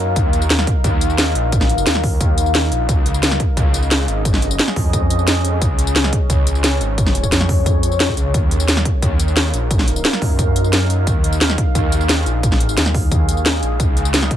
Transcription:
Already playing: F#2 D#4 A#4 F5
0.16 D#2, kick, closed hi-hat, tambourine
0.33 closed hi-hat, tambourine
0.42 tambourine
0.50 snare, closed hi-hat, tambourine
0.59 snare, tambourine
0.67 kick, closed hi-hat
0.84 D#2, kick, closed hi-hat, tambourine
1.01 closed hi-hat, tambourine
1.10 tambourine
1.18 snare, closed hi-hat, tambourine
1.35 A#1, closed hi-hat, tambourine
1.52 kick, closed hi-hat, tambourine
1.61 snare
1.69 closed hi-hat, tambourine
1.78 tambourine
1.87 D#2, snare, closed hi-hat, tambourine
1.95 snare, tambourine
2.04 kick, open hi-hat
2.21 D#2, kick, closed hi-hat, tambourine
2.38 closed hi-hat, tambourine
2.46 tambourine
2.55 snare, closed hi-hat, tambourine
2.72 A#1, closed hi-hat, tambourine
2.89 C#2 C#4 G#4 D#5, kick, closed hi-hat, tambourine
3.06 closed hi-hat, tambourine
3.14 tambourine
3.23 snare, closed hi-hat, tambourine
3.31 snare, tambourine
3.40 kick, closed hi-hat
3.57 C#2, kick, closed hi-hat, tambourine
3.74 closed hi-hat, tambourine
3.83 tambourine
3.91 snare, closed hi-hat, tambourine
4.08 G#1, closed hi-hat, tambourine
4.25 kick, closed hi-hat, tambourine
4.34 snare
4.42 closed hi-hat, tambourine
4.51 tambourine
4.59 snare, closed hi-hat, tambourine
4.68 snare, tambourine
4.76 F2, kick, open hi-hat
4.93 kick, closed hi-hat, tambourine
5.10 closed hi-hat, tambourine
5.19 tambourine
5.27 snare, closed hi-hat, tambourine
5.45 closed hi-hat, tambourine
5.62 C#2 C#5, kick, closed hi-hat, tambourine
5.79 closed hi-hat, tambourine
5.87 tambourine
5.96 snare, closed hi-hat, tambourine
6.04 snare, tambourine
6.13 kick, closed hi-hat
6.30 C#2, kick, closed hi-hat, tambourine
6.47 closed hi-hat, tambourine
6.55 tambourine
6.64 snare, closed hi-hat, tambourine
6.81 G#1, closed hi-hat, tambourine
6.98 kick, closed hi-hat, tambourine
7.06 snare
7.15 closed hi-hat, tambourine
7.23 kick, tambourine
7.32 F2, snare, closed hi-hat, tambourine
7.41 snare, tambourine
7.49 kick, open hi-hat
7.66 kick, closed hi-hat, tambourine
7.83 closed hi-hat, tambourine
7.92 tambourine
8.00 snare, closed hi-hat, tambourine
8.09 kick
8.17 C#2, closed hi-hat, tambourine
8.34 D#2 D#4 A#4 F5, kick, closed hi-hat, tambourine
8.51 closed hi-hat, tambourine
8.60 tambourine
8.68 snare, closed hi-hat, tambourine
8.77 snare, tambourine
8.85 kick, closed hi-hat
9.02 D#2, kick, closed hi-hat, tambourine
9.20 closed hi-hat, tambourine
9.28 tambourine
9.37 snare, closed hi-hat, tambourine
9.54 A#1, closed hi-hat, tambourine
9.71 kick, closed hi-hat, tambourine
9.79 snare
9.88 closed hi-hat, tambourine
9.96 tambourine
10.05 snare, closed hi-hat, tambourine
10.13 snare, tambourine
10.22 F#2, kick, open hi-hat
10.39 kick, closed hi-hat, tambourine
10.56 closed hi-hat, tambourine
10.64 tambourine
10.73 snare, closed hi-hat, tambourine
10.90 closed hi-hat, tambourine
11.07 D#2 G#4, kick, closed hi-hat, tambourine
11.24 closed hi-hat, tambourine
11.33 tambourine
11.41 snare, closed hi-hat, tambourine
11.50 snare, tambourine
11.58 kick, closed hi-hat
11.75 D#2, kick, closed hi-hat, tambourine
11.92 closed hi-hat, tambourine
12.01 tambourine
12.09 snare, closed hi-hat, tambourine
12.26 A#1, closed hi-hat, tambourine
12.43 kick, closed hi-hat, tambourine
12.52 snare
12.60 closed hi-hat, tambourine
12.69 tambourine
12.77 D#2, snare, closed hi-hat, tambourine
12.86 snare, tambourine
12.94 kick, open hi-hat
13.12 D#2, kick, closed hi-hat, tambourine
13.29 closed hi-hat, tambourine
13.37 tambourine
13.46 snare, closed hi-hat, tambourine
13.63 A#1, closed hi-hat, tambourine
13.80 C#2 C#4 D#5, kick, closed hi-hat, tambourine
13.97 closed hi-hat, tambourine
14.05 tambourine
14.14 snare, closed hi-hat, tambourine
14.22 snare, tambourine
14.31 kick, closed hi-hat

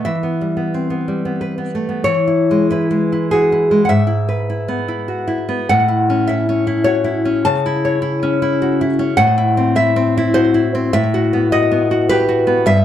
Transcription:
0.05 E3 E5
0.23 B3
0.41 G3
0.57 B3
0.74 C4
0.90 B3
1.08 G3
1.25 B3
1.41 B4
1.58 B3
1.75 A3
1.89 B3
2.04 E3 C#5
2.27 E4
2.51 G#3
2.71 E4 B4
2.91 G#3
3.12 E4
3.31 F#4 G#4
3.52 E4
3.71 G#3
3.85 F#5
3.89 G#2 E5
4.07 E4
4.29 B4
4.50 E4
4.68 B3
4.88 E4
5.08 F#4
5.28 E4
5.49 B3
5.69 A2 F#5
5.88 E4
6.10 C#4
6.27 E4 E5
6.49 C#4
6.67 E4
6.84 F#4 C#5
7.04 E4
7.25 C#4
7.45 C#3 A5
7.66 E4
7.85 C#5
8.02 E4
8.23 C#4
8.42 E4
8.62 F#4
8.81 E4
8.99 C#4
9.17 A2 F#5
9.38 E4
9.57 C4
9.76 E4 E5
9.96 C4
10.17 E4
10.34 F#4 C5
10.54 E4
10.75 C4
10.93 A2 E5
11.14 F#4
11.33 B3
11.52 F#4 D#5
11.71 B3
11.91 F#4
12.09 G4 B4
12.29 F#4
12.47 B3
12.66 G2 E5

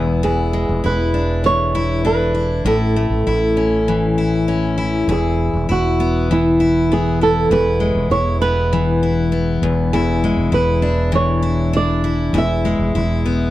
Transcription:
Already playing: E1 E2 E3 G#3 B3 E4
0.23 E2 E4 G#4
0.53 G#3
0.69 E1
0.84 E1 E4 B4
1.14 D4
1.44 E3 C#5
1.75 E4
2.05 D4 B4
2.35 E4
2.65 A1 A2 E4 A4
2.96 A3
3.10 A1
3.27 A1 E4
3.57 C#4
3.88 E3
4.18 E4
4.48 C#4
4.78 E4
5.08 E1 E2 E4
5.12 G#4
5.53 E1
5.69 E1 E4 F#4
6.00 B3
6.31 E3 E4
6.60 E4
6.92 B3 G#4
7.21 E4 A4
7.51 E1 E2 E4 B4
7.80 G#3
7.95 E1
8.10 E1 E4 C#5
8.42 B3 B4
8.73 E3
9.03 E4
9.32 B3
9.62 E1 E2
9.93 E2 E4 G#4
10.24 G#3
10.37 E1
10.52 E1 E4 B4
10.82 D4
11.12 E3 C#5
11.43 E4
11.73 D4 D5
12.04 E4
12.33 E1 E2 E4
12.38 E5
12.65 G#3
12.79 E1
12.95 E1 E4
13.26 B3

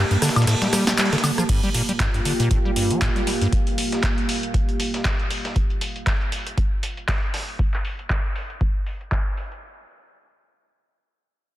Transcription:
Already playing: A#3 G4 A5
0.11 G2, closed hi-hat
0.22 D3, cross-stick, snare, closed hi-hat, open hi-hat, shaker
0.29 snare, closed hi-hat
0.36 A#2, snare, closed hi-hat, high woodblock, shaker
0.42 snare, closed hi-hat
0.47 A2, cross-stick, snare, closed hi-hat, ride, shaker
0.62 G3, snare, closed hi-hat
0.73 G3, cross-stick, snare, closed hi-hat, open hi-hat, shaker
0.87 G3, snare, closed hi-hat, shaker
0.98 G3, snare, clap, closed hi-hat, ride, shaker
1.05 snare, closed hi-hat
1.13 D3, cross-stick, snare, closed hi-hat
1.18 snare, closed hi-hat
1.24 D3, snare, open hi-hat, high woodblock, shaker
1.38 F3, cross-stick, closed hi-hat, shaker
1.49 G2 A#3 F4 G4 F5, kick, closed hi-hat, crash
1.63 G3 G5, closed hi-hat
1.74 A#2, closed hi-hat, open hi-hat
1.87 G3 A#4, closed hi-hat
2.00 G2, kick, snare, clap, closed hi-hat
2.14 G2, closed hi-hat
2.25 D3, closed hi-hat, open hi-hat
2.40 A#2, closed hi-hat
2.51 kick, closed hi-hat
2.65 G3
2.76 G2, closed hi-hat, open hi-hat
2.91 G3, closed hi-hat
3.02 A2, kick, snare, clap, closed hi-hat
3.16 G3, closed hi-hat
3.27 G3, snare, open hi-hat
3.41 G2, closed hi-hat
3.52 kick, closed hi-hat
3.67 closed hi-hat
3.78 closed hi-hat, open hi-hat
3.92 snare, closed hi-hat
4.03 kick, snare, clap, closed hi-hat
4.18 closed hi-hat
4.29 closed hi-hat, open hi-hat
4.43 closed hi-hat
4.54 kick, closed hi-hat
4.69 closed hi-hat
4.80 closed hi-hat, open hi-hat
4.94 snare, closed hi-hat
5.05 kick, snare, clap, closed hi-hat
5.19 closed hi-hat
5.31 closed hi-hat, open hi-hat
5.45 snare, closed hi-hat
5.56 kick, closed hi-hat
5.70 closed hi-hat
5.81 closed hi-hat, open hi-hat
5.96 closed hi-hat
6.07 kick, snare, clap, closed hi-hat
6.21 closed hi-hat
6.32 closed hi-hat, open hi-hat
6.47 closed hi-hat
6.58 kick, closed hi-hat
6.83 closed hi-hat, open hi-hat
6.97 closed hi-hat
7.08 kick, snare, clap, closed hi-hat
7.23 closed hi-hat
7.34 snare, open hi-hat
7.48 closed hi-hat
7.59 kick, closed hi-hat
7.74 clap, closed hi-hat
7.85 open hi-hat
7.99 closed hi-hat
8.10 kick, clap, closed hi-hat
8.24 closed hi-hat
8.36 open hi-hat
8.50 closed hi-hat
8.61 kick, closed hi-hat
8.86 open hi-hat
9.01 closed hi-hat
9.12 kick, clap, closed hi-hat
9.26 closed hi-hat
9.37 open hi-hat
9.52 closed hi-hat

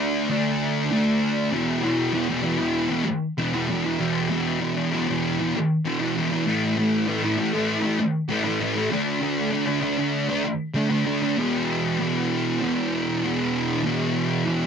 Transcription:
Already playing: D3 A3 D4
0.29 D3 A3 D4
0.91 D3 A3 D4
1.51 E2 B2 E3
1.82 E2 B2 E3
2.13 E2 B2 E3
2.29 B2 E3
2.42 E2 B2 E3
2.58 B2 E3
2.89 B2 E3
3.05 muted distorted electric guitar stroke
3.38 E2 B2 E3
3.53 B2 E3
3.68 E2 B2 E3
3.84 B2 E3
3.99 E2 B2 E3
4.30 E2 B2 E3
4.61 E2 B2 E3
4.76 B2 E3
4.92 E2 B2 E3
5.08 B2 E3
5.39 B2 E3
5.56 muted distorted electric guitar stroke
5.85 E2 B2 E3
6.00 B2 E3
6.16 E2 B2 E3
6.31 B2 E3
6.46 A2 E3 A3
6.76 A2 E3 A3
7.07 A2 E3 A3
7.23 E3 A3
7.37 A2 E3 A3
7.53 E3 A3
7.83 E3 A3
7.99 muted distorted electric guitar stroke
8.29 A2 E3 A3
8.44 E3 A3
8.60 A2 E3 A3
8.75 E3 A3
8.91 D3 A3 D4
9.20 D3 A3 D4
9.51 D3 A3 D4
9.66 A3 D4
9.81 D3 A3 D4
9.98 A3 D4
10.29 A3 D4
10.43 muted distorted electric guitar stroke
10.74 D3 A3 D4
10.90 A3 D4
11.05 D3 A3 D4
11.22 A3 D4
11.36 E2 B2 E3
11.99 E2 B2 E3
12.60 E2 B2 E3
13.23 E2 B2 E3
13.83 E2 B2 E3
14.46 E2 B2 E3

